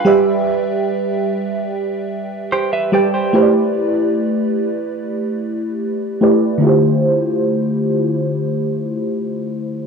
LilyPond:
<<
  \new Staff \with { instrumentName = "Clean electric guitar" } { \time 4/4 \key d \dorian \tempo 4 = 73 <f' b'>16 r2 r8. <g' c''>16 <b' e''>16 <a' d''>16 <g' c''>16~ | <g' c''>16 r2. r8. | r1 | }
  \new Staff \with { instrumentName = "FM electric piano" } { \time 4/4 \key d \dorian << { g''16 r2. r8. | r1 | r1 | } \\ { <g g' b' d'' e''>2 r4. <g g' b' d'' g''>8 | <a e' g' b' c'' d''>2 r4. <a e' g' b' d''>8 | <d a e' f' g' c''>1 | } >> }
>>